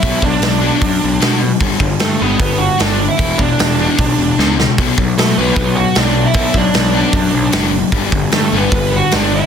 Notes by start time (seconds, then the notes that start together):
Already playing: E4 E5
0.01 B1 B2 F#3 B3, kick, open hi-hat
0.22 B1 B2 F#3 D4 D5, kick
0.42 B1 B2 F#3, snare, open hi-hat
0.61 B2 F#3 B3
0.81 F#2 B2 F#3, kick, open hi-hat
1.01 B1 B2 F#3
1.20 B2 F#3 B3, snare, open hi-hat
1.40 B2 F#3
1.59 G1 G2 D3 G3, kick, open hi-hat
1.80 G1 G2 D3, kick
1.99 G2 D3 A3 A4, snare, open hi-hat
2.19 G1 G2 D3 G3 B3 B4
2.38 G1 G2 D3 B3 B4, kick, open hi-hat
2.58 G2 D3 F#4 F#5
2.78 G1 G2 D3 G3 D4 D5, snare, open hi-hat
2.97 G2 D3
3.09 E4 E5
3.17 E1 E2 B2 E3, kick, open hi-hat
3.37 E1 E2 B2 D4 D5, kick
3.58 E1 E2 B2, snare, open hi-hat
3.78 E2 B2 E3
3.98 B1 E2 B2, kick, open hi-hat
4.18 E1 E2 B2
4.38 C#2 E2 B2 E3, snare
4.58 E2 B2, snare
4.78 B1 B2 F#3 B3, kick, open hi-hat
4.98 B1 B2 F#3, kick
5.18 B2 F#3 A3 A4, snare, open hi-hat
5.38 B1 B2 F#3 B3 B4
5.55 B1 B2 F#3 B3 B4, kick, open hi-hat
5.76 B2 F#3 F#4 F#5
5.95 B1 B2 F#3 B3 D4 D5, snare, open hi-hat
6.14 B2 F#3
6.26 E4 E5
6.34 B1 B2 F#3 B3, kick, open hi-hat
6.54 B1 B2 F#3 D4, kick
6.58 D5
6.74 B1 B2 F#3, snare, open hi-hat
6.93 B2 F#3 B3
7.13 F#2 B2 F#3, kick, open hi-hat
7.33 B1 B2 F#3
7.52 F#1 B2 F#3 B3, snare, open hi-hat
7.73 B2 F#3
7.92 G1 G2 D3 G3, kick, open hi-hat
8.11 G1 G2 D3, kick
8.31 G2 D3, snare, open hi-hat
8.35 A3 A4
8.52 G1 G2 D3 G3 B3
8.57 B4
8.72 G1 G2 D3 B3 B4, kick, open hi-hat
8.93 G2 D3 F#4 F#5
9.11 G1 G2 D3 G3 D4 D5, snare, open hi-hat
9.32 G2 D3 E4 E5